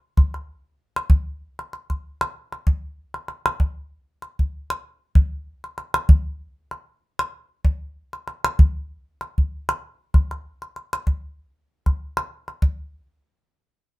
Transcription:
0.17 calabash thump, calabash click
0.34 calabash click
0.96 calabash click
1.10 calabash thump
1.59 calabash click
1.73 calabash click
1.90 calabash thump, calabash click
2.21 calabash click
2.52 calabash click
2.67 calabash thump
3.14 calabash click
3.28 calabash click
3.46 calabash click
3.60 calabash thump
4.22 calabash click
4.39 calabash thump
4.70 calabash click
5.15 calabash thump
5.64 calabash click
5.78 calabash click
5.94 calabash click
6.09 calabash thump
6.71 calabash click
7.19 calabash click
7.65 calabash thump
8.13 calabash click
8.28 calabash click
8.45 calabash click
8.59 calabash thump
9.21 calabash click
9.38 calabash thump
9.69 calabash click
10.14 calabash thump, calabash click
10.31 calabash click
10.62 calabash click
10.76 calabash click
10.93 calabash click
11.07 calabash thump
11.86 calabash thump, calabash click
12.17 calabash click
12.48 calabash click
12.62 calabash thump

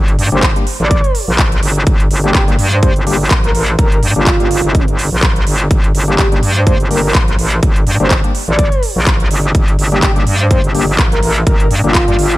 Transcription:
Already playing: G1
0.08 closed hi-hat
0.19 G2, open hi-hat
0.32 G1 G3 A#3 D4 G4 C5, closed hi-hat
0.43 kick, clap, closed hi-hat
0.56 G3 A#3 D4 G4, closed hi-hat
0.67 open hi-hat
0.80 A1 D5, closed hi-hat
0.91 kick, closed hi-hat
1.04 closed hi-hat
1.15 open hi-hat
1.28 A#1
1.39 kick, clap, closed hi-hat
1.52 closed hi-hat
1.63 G1, open hi-hat
1.76 closed hi-hat
1.87 G1, kick, closed hi-hat
2.00 closed hi-hat
2.11 G1, open hi-hat
2.24 G3 A#3 D4 G4, closed hi-hat
2.35 G1 G4, kick, clap, closed hi-hat
2.48 G3 A#3 D4 G4, closed hi-hat
2.59 G2, open hi-hat
2.72 C5, closed hi-hat
2.83 G3 A#3 D4 G4 C5, kick, closed hi-hat
2.96 G1, closed hi-hat
3.07 G3 A#3 D4 G4, open hi-hat
3.31 A#1, kick, clap, closed hi-hat
3.44 A#4, closed hi-hat
3.55 A1 A#4, open hi-hat
3.79 G1 A#4, kick, closed hi-hat
3.92 A#4, closed hi-hat
4.03 G2, open hi-hat
4.16 G1 G3 A#3 D4 F4 G4
4.27 kick, clap, closed hi-hat
4.40 G1 G3 A#3 D4 G4, closed hi-hat
4.51 open hi-hat
4.64 G1, closed hi-hat
4.75 kick, closed hi-hat
4.88 G1, closed hi-hat
4.99 open hi-hat
5.12 A#1
5.23 kick, clap, closed hi-hat
5.36 closed hi-hat
5.47 G1, open hi-hat
5.71 G1, kick, closed hi-hat
5.84 closed hi-hat
5.95 G1, open hi-hat
6.08 G3 A#3 D4 G4, closed hi-hat
6.19 G1 G4, kick, clap, closed hi-hat
6.32 G3 A#3 D4 G4, closed hi-hat
6.43 G2, open hi-hat
6.56 C5, closed hi-hat
6.67 G3 A#3 D4 G4 C5, kick, closed hi-hat
6.80 G1, closed hi-hat
6.91 G3 A#3 D4 G4 A#4, open hi-hat
7.04 A#4
7.15 A#1, kick, clap, closed hi-hat
7.28 closed hi-hat
7.39 A1, open hi-hat
7.52 closed hi-hat
7.63 G1, kick, closed hi-hat
7.76 closed hi-hat
7.87 G2, open hi-hat
8.00 G1 G3 A#3 D4 G4 C5, closed hi-hat
8.11 kick, clap, closed hi-hat
8.24 G3 A#3 D4 G4, closed hi-hat
8.35 open hi-hat
8.48 A1 D5, closed hi-hat
8.59 kick, closed hi-hat
8.72 closed hi-hat
8.83 open hi-hat
8.96 A#1
9.07 kick, clap, closed hi-hat
9.20 closed hi-hat
9.31 G1, open hi-hat
9.44 closed hi-hat
9.55 G1, kick, closed hi-hat
9.68 closed hi-hat
9.79 G1, open hi-hat
9.92 G3 A#3 D4 G4, closed hi-hat
10.03 G1 G4, kick, clap, closed hi-hat
10.16 G3 A#3 D4 G4, closed hi-hat
10.27 G2, open hi-hat
10.40 C5, closed hi-hat
10.51 G3 A#3 D4 G4 C5, kick, closed hi-hat
10.64 G1, closed hi-hat
10.75 G3 A#3 D4 G4, open hi-hat
10.99 A#1, kick, clap, closed hi-hat
11.12 A#4, closed hi-hat
11.23 A1 A#4, open hi-hat
11.36 closed hi-hat
11.47 G1 A#4, kick, closed hi-hat
11.60 A#4, closed hi-hat
11.71 G2, open hi-hat
11.84 G1 G3 A#3 D4 F4 G4
11.95 kick, clap, closed hi-hat
12.08 G2 G3 A#3 D4 G4, closed hi-hat
12.19 G1, open hi-hat
12.32 closed hi-hat

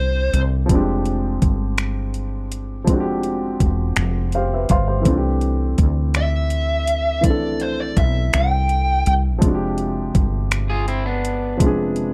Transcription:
Already playing: C2 E3 A3 C4 D4 G4 C5
0.33 C2, closed hi-hat
0.66 F1 F3 G3, kick, closed hi-hat
0.71 G#3 C4 D4
0.75 G4
1.05 closed hi-hat
1.42 G1, kick, closed hi-hat
1.78 finger snap, closed hi-hat
2.14 closed hi-hat
2.52 closed hi-hat
2.84 F1 F3 G#3, kick, closed hi-hat
2.89 C4 D4
2.94 F#4
3.00 G4
3.23 closed hi-hat
3.60 E1, kick, closed hi-hat
3.96 F1, finger snap, closed hi-hat
4.32 G4 C5 F5, closed hi-hat
4.53 B4 E5
4.69 G1 C5 F5 C6, kick, closed hi-hat
4.88 G4 C5
5.01 E3 A3, closed hi-hat
5.05 C2 C4 D4, kick
5.10 F4
5.17 G4
5.41 closed hi-hat
5.78 D2, kick, closed hi-hat
6.14 E5, finger snap, closed hi-hat
6.50 closed hi-hat
6.87 closed hi-hat
7.21 C2 E3 A3, kick, closed hi-hat
7.25 C4 D4 D5
7.30 A4
7.60 C5, closed hi-hat
7.80 D5
7.97 B1 E5, kick, closed hi-hat
8.33 C2 G5, finger snap, closed hi-hat
8.69 closed hi-hat
9.06 C2, closed hi-hat
9.38 F1 F3 G#3, kick, closed hi-hat
9.43 C3 D4
9.48 F#4
9.54 G4
9.78 closed hi-hat
10.15 G1, kick, closed hi-hat
10.51 finger snap, closed hi-hat
10.70 F4 G#4
10.88 C4 E4, closed hi-hat
11.06 B3 D4
11.25 closed hi-hat
11.57 F1 F3 G#3, kick, closed hi-hat
11.62 C3 D4
11.66 G#4
11.96 closed hi-hat

